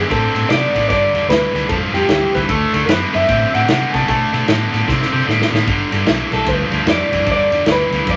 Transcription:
0.09 fingered electric bass A2, overdriven electric guitar D3 C4, clean electric guitar A4, kick, ride
0.34 fingered electric bass A2, overdriven electric guitar D3 C4, snare, ride
0.49 fingered electric bass C3, overdriven electric guitar D3 B3, clean electric guitar D5, snare, ride
0.74 fingered electric bass A1, overdriven electric guitar D3 B3, kick, snare, ride
0.89 fingered electric bass G1, overdriven electric guitar G2 D3, clean electric guitar D5, kick, snare, ride
1.13 fingered electric bass E2, overdriven electric guitar G2 D3, snare, ride
1.28 fingered electric bass D2, overdriven electric guitar G2 E3, clean electric guitar B4, snare, ride
1.53 fingered electric bass D2, overdriven electric guitar G2 E3, snare, ride
1.69 fingered electric bass F2, overdriven electric guitar G2 F3, clean electric guitar A4, kick, ride
1.93 fingered electric bass F2, overdriven electric guitar G2 F3, clean electric guitar G4, snare, ride
2.08 fingered electric bass D2, overdriven electric guitar G2 E3, snare, ride
2.34 fingered electric bass D2, overdriven electric guitar G2 E3, upright piano B4, kick, snare, ride
2.49 fingered electric bass D2, overdriven electric guitar D3 A3, upright piano A4, kick, ride
2.73 fingered electric bass D2, overdriven electric guitar D3 A3, snare, ride
2.85 fingered electric bass F#2, overdriven electric guitar D3, upright piano A#4
2.89 overdriven electric guitar B3, upright piano B4, snare, ride
3.13 fingered electric bass F#2, overdriven electric guitar D3 B3, upright piano E5, snare, ride
3.28 fingered electric bass A2, overdriven electric guitar D3 C4, kick, ride
3.54 fingered electric bass A2, overdriven electric guitar D3 C4, upright piano F#5, snare, ride
3.68 fingered electric bass C3, overdriven electric guitar D3 B3, snare, ride
3.90 fingered electric bass C3, overdriven electric guitar D3 B3, upright piano G#5, kick, ride
3.94 upright piano A5, snare
4.05 fingered electric bass B2, overdriven electric guitar D3 A3, upright piano G#5, kick, ride
4.09 upright piano A5, snare
4.33 fingered electric bass B2, overdriven electric guitar D3 A3, snare, ride
4.48 fingered electric bass A2, overdriven electric guitar D3 B3, snare, ride
4.72 fingered electric bass A2, overdriven electric guitar D3 B3, snare, ride
4.87 fingered electric bass C3, overdriven electric guitar D3 C4, kick, snare
5.02 snare
5.12 fingered electric bass C3, overdriven electric guitar D3 C4
5.27 fingered electric bass A2, overdriven electric guitar D3 B3, snare
5.42 snare
5.52 fingered electric bass A2, overdriven electric guitar D3 B3, snare
5.67 fingered electric bass G1, overdriven electric guitar G2 D3, kick, ride
5.92 fingered electric bass G1, overdriven electric guitar G2 D3, snare, ride
6.06 fingered electric bass B1, overdriven electric guitar G2 E3, snare, ride
6.32 fingered electric bass B1, overdriven electric guitar G2 E3, clean electric guitar A4, snare, ride
6.46 fingered electric bass D2, overdriven electric guitar G2 F3, clean electric guitar B4, kick, snare, ride
6.71 fingered electric bass D2, overdriven electric guitar G2 F3, snare, ride
6.86 fingered electric bass F2, overdriven electric guitar G2 E3, clean electric guitar D5, snare, ride
7.12 fingered electric bass F2, overdriven electric guitar G2 E3, kick, snare, ride
7.26 fingered electric bass E2, overdriven electric guitar G2 D3, kick, ride
7.31 clean electric guitar D5
7.51 fingered electric bass E2, overdriven electric guitar G2 D3, snare, ride
7.66 fingered electric bass D2, overdriven electric guitar G2 E3, snare, ride
7.72 clean electric guitar B4
7.91 fingered electric bass D2, overdriven electric guitar G2 E3, snare, ride
8.07 fingered electric bass F2, overdriven electric guitar G2 F3, clean electric guitar D5, kick, snare, ride

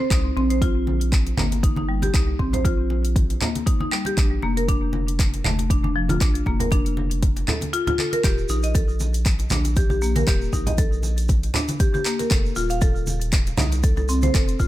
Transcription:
0.11 analog synth bass C2, marimba D#4, kick, clap, closed hi-hat
0.36 analog synth bass A#1, marimba C4, muted conga
0.50 marimba C5, closed hi-hat
0.62 marimba F4, kick, closed hi-hat, muted conga
0.87 muted conga, high conga
1.01 closed hi-hat
1.12 kick, clap, closed hi-hat
1.26 closed hi-hat, muted conga
1.37 analog synth bass G1, marimba A#3, clap, high conga, low conga
1.52 closed hi-hat, muted conga
1.63 marimba D#4, kick, closed hi-hat
1.76 marimba D#4, muted conga, high conga
1.89 marimba G3
2.02 marimba G4, closed hi-hat, muted conga, high conga
2.14 analog synth bass C2, marimba D#4, kick, clap, closed hi-hat
2.39 analog synth bass A#1, marimba C4, kick, muted conga
2.53 marimba C5, closed hi-hat, low conga
2.65 marimba F4, kick, closed hi-hat, muted conga
2.90 muted conga
3.05 closed hi-hat
3.16 kick, closed hi-hat, high conga
3.30 closed hi-hat, muted conga
3.41 marimba A#3, clap, low conga
3.55 closed hi-hat, muted conga, high conga
3.66 marimba D#4, kick, closed hi-hat
3.80 marimba D#4, muted conga, high conga
3.92 marimba G3, clap
4.05 marimba G4, closed hi-hat, muted conga
4.17 analog synth bass A#1, marimba D4, kick, clap, closed hi-hat
4.42 analog synth bass F1, marimba A#3, muted conga
4.57 marimba A#4, closed hi-hat
4.68 marimba D4, kick, closed hi-hat, muted conga
4.93 muted conga, high conga
5.08 closed hi-hat
5.19 kick, clap, closed hi-hat
5.34 closed hi-hat, muted conga
5.44 analog synth bass F1, marimba A3, clap, high conga, low conga
5.59 closed hi-hat, muted conga
5.70 marimba D4, kick, closed hi-hat
5.84 marimba D4, muted conga, high conga
5.96 marimba F3
6.09 marimba F4, closed hi-hat, muted conga, high conga
6.21 analog synth bass A#1, marimba D4, kick, clap, closed hi-hat
6.35 closed hi-hat
6.46 analog synth bass F1, marimba A#3, kick, muted conga, high conga
6.60 marimba A#4, closed hi-hat, low conga
6.71 marimba D4, kick, closed hi-hat, muted conga
6.86 closed hi-hat
6.97 muted conga, high conga
7.11 closed hi-hat
7.23 kick, closed hi-hat, high conga
7.36 closed hi-hat, muted conga
7.48 marimba A4, clap, low conga
7.61 closed hi-hat, muted conga, high conga
7.73 marimba F4, closed hi-hat
7.87 marimba F4, closed hi-hat, muted conga, high conga, low conga
7.98 marimba A4, clap, high conga
8.13 marimba A#4, closed hi-hat, muted conga
8.24 analog synth bass D#1, marimba G4, kick, clap, closed hi-hat, shaker
8.38 shaker
8.49 analog synth bass A#1, marimba D#4, muted conga, shaker
8.63 marimba D#5, closed hi-hat, shaker
8.74 marimba A4, kick, closed hi-hat, muted conga, shaker
8.88 shaker
9.00 muted conga, high conga, shaker
9.14 closed hi-hat, shaker
9.26 kick, clap, closed hi-hat, shaker
9.39 closed hi-hat, muted conga, shaker
9.50 analog synth bass A#1, marimba D4, clap, high conga, low conga, shaker
9.65 closed hi-hat, muted conga, shaker
9.76 marimba G4, kick, closed hi-hat, shaker
9.90 marimba G4, muted conga, high conga, shaker
10.02 marimba A#3, shaker
10.16 marimba A#4, closed hi-hat, muted conga, high conga, shaker
10.27 analog synth bass D#1, marimba G4, kick, clap, closed hi-hat, shaker
10.42 shaker
10.53 analog synth bass A#1, marimba D#4, kick, muted conga, shaker
10.67 marimba D#5, closed hi-hat, low conga, shaker
10.78 marimba A4, kick, closed hi-hat, muted conga, shaker
10.93 shaker
11.03 muted conga, shaker
11.17 closed hi-hat, shaker
11.29 kick, closed hi-hat, high conga, shaker
11.43 closed hi-hat, muted conga, shaker
11.54 marimba D4, clap, low conga, shaker
11.68 closed hi-hat, muted conga, high conga, shaker
11.80 marimba G4, kick, closed hi-hat, shaker
11.94 marimba G4, muted conga, high conga, shaker
12.05 marimba A#3, clap, shaker
12.19 marimba A#4, closed hi-hat, muted conga, shaker
12.31 analog synth bass F1, marimba A4, kick, clap, closed hi-hat, shaker
12.46 shaker
12.56 analog synth bass D#1, marimba F4, muted conga, shaker
12.70 marimba F5, closed hi-hat, shaker
12.81 marimba A4, kick, closed hi-hat, muted conga, shaker
12.96 shaker
13.07 muted conga, high conga, shaker
13.21 closed hi-hat, shaker
13.32 kick, clap, closed hi-hat, shaker
13.46 closed hi-hat, muted conga, shaker
13.57 analog synth bass C2, marimba D#4, clap, high conga, low conga, shaker
13.72 closed hi-hat, muted conga, shaker
13.83 marimba A4, kick, closed hi-hat, shaker
13.97 marimba A4, muted conga, high conga, shaker
14.09 marimba C4, shaker
14.22 marimba C5, closed hi-hat, muted conga, high conga, shaker
14.34 analog synth bass F1, marimba A4, kick, clap, closed hi-hat, shaker
14.48 closed hi-hat, shaker
14.60 analog synth bass D#1, marimba F4, kick, muted conga, shaker

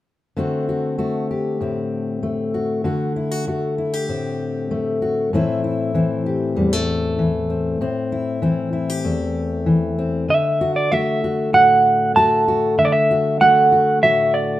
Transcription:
0.36 steel-string acoustic guitar D3 A3 C4 F#4
0.69 steel-string acoustic guitar F#4
0.98 steel-string acoustic guitar A3 F#4
1.31 steel-string acoustic guitar G4
1.61 steel-string acoustic guitar A2 C4
2.23 steel-string acoustic guitar A3
2.54 steel-string acoustic guitar F#4
2.84 steel-string acoustic guitar D3 F#4
3.16 steel-string acoustic guitar E4
3.31 steel-string acoustic guitar F#4
3.47 steel-string acoustic guitar A3 F#4
3.78 steel-string acoustic guitar E4
3.93 steel-string acoustic guitar G4
4.09 steel-string acoustic guitar A2 C4
4.71 steel-string acoustic guitar A3
5.02 steel-string acoustic guitar F#4
5.33 steel-string acoustic guitar A2 E3 A3 C4 E4
5.64 steel-string acoustic guitar E4
5.94 steel-string acoustic guitar E3 C4
6.26 steel-string acoustic guitar G4
6.56 steel-string acoustic guitar E2 G3
6.73 steel-string acoustic guitar A3
7.19 steel-string acoustic guitar E3
7.50 steel-string acoustic guitar C4
7.81 steel-string acoustic guitar A2 C4
8.12 steel-string acoustic guitar E4
8.42 steel-string acoustic guitar E3 C4
8.73 steel-string acoustic guitar E4
8.90 steel-string acoustic guitar G4
9.04 steel-string acoustic guitar E2 A3
9.66 steel-string acoustic guitar E3
9.99 steel-string acoustic guitar C4
10.29 steel-string acoustic guitar D3, clean electric guitar E5
10.61 steel-string acoustic guitar F#4
10.76 clean electric guitar D5
10.92 steel-string acoustic guitar A3 F#4, clean electric guitar E5
11.24 steel-string acoustic guitar F#4
11.53 steel-string acoustic guitar A2 F#4, clean electric guitar F#5
12.16 steel-string acoustic guitar A3 F#4, clean electric guitar A5
12.48 steel-string acoustic guitar F#4
12.78 steel-string acoustic guitar D3, clean electric guitar E5
12.85 clean electric guitar D5
12.92 clean electric guitar E5
13.11 steel-string acoustic guitar F#4
13.41 steel-string acoustic guitar A3 F#4, clean electric guitar F#5
13.72 steel-string acoustic guitar F#4
14.03 steel-string acoustic guitar A2 F#4, clean electric guitar E5
14.34 clean electric guitar D5

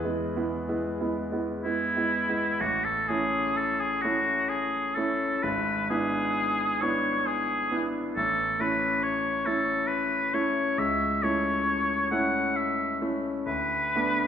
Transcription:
Already playing: grand piano E2 E4 G#4 B4
0.04 grand piano G#3 B3 E4
0.36 grand piano G#3 B3 E4
0.69 grand piano G#3 B3 E4
1.00 grand piano G#3 B3 E4
1.32 grand piano G#3 B3 E4
1.63 grand piano G#3 B3 E4, oboe E4
1.97 grand piano G#3 B3 E4
2.29 grand piano G#3 B3 E4
2.60 grand piano A1, oboe F#4
2.85 oboe A4
3.09 grand piano A3 C#4 E4, oboe G#4
3.57 oboe A4
3.80 oboe G#4
4.02 grand piano A3 C#4 E4, oboe F#4
4.49 oboe G#4
4.95 grand piano A3 C#4 E4, oboe A4
5.42 grand piano G#1, oboe B4
5.90 grand piano B3 D4 E4, oboe G#4
6.82 grand piano B3 D4 E4, oboe C#5
7.27 oboe G#4
7.71 grand piano B3 D4 E4
8.16 grand piano A1, oboe A4
8.60 grand piano A3 C#4 E4, oboe B4
9.03 oboe C#5
9.45 grand piano A3 C#4 E4, oboe A4
9.87 oboe B4
10.34 grand piano A3 C#4 E4, oboe C#5
10.78 grand piano C#2, oboe E5
11.23 grand piano A3 C#4 E4, oboe C#5
12.11 grand piano A3 C#4 E4, oboe F#5
12.56 oboe E5
13.01 grand piano A3 C#4 E4
13.46 grand piano D2, oboe B4
13.95 grand piano A3 B3 D4

